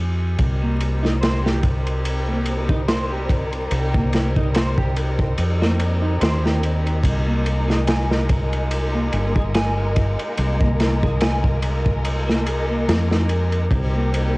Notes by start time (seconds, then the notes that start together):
Already playing: F2
0.38 C2 G3 C4 D#4 A#4, kick, ride
0.62 A#3
0.81 ride
1.03 D#4, snare
1.21 C5, snare, ride
1.44 G4, snare
1.63 kick, ride
1.87 ride
2.05 ride
2.27 A#3
2.46 ride
2.69 D#4, kick
2.88 C5, snare, ride
3.11 G4
3.29 kick, ride
3.53 ride
3.71 C2, ride
3.94 A#3, kick
4.13 snare, ride
4.36 D#4, kick
4.54 C5, snare, ride
4.78 G4, kick
4.96 ride
5.19 kick
5.38 F2, ride
5.62 A#3, snare
5.80 ride
6.02 D#4
6.20 D#2 C5, snare, ride
6.44 G4, snare
6.63 ride
6.87 ride
7.03 C2 G#3 A#3 A#4, kick, ride
7.27 A#3
7.46 ride
7.68 G#4, snare
7.87 G#5, snare, ride
8.10 A#4, snare
8.29 kick, ride
8.53 ride
8.71 ride
8.94 A#3
9.13 G1, ride
9.36 G#4, kick
9.54 G#5, snare, ride
9.78 A#4
9.96 kick, ride
10.19 ride
10.37 C2, ride
10.61 A#3, kick
10.80 snare, ride
11.03 G#4, kick
11.21 G#5, snare, ride
11.44 A#4, kick
11.62 ride
11.86 kick
12.05 ride
12.28 A#3, snare
12.46 G#4, ride
12.69 A#3
12.88 F2 A#3, snare, ride
13.11 D#4, snare
13.29 ride
13.52 ride
13.70 C2 G3 C4 D#4, kick, ride
13.95 A#3
14.14 ride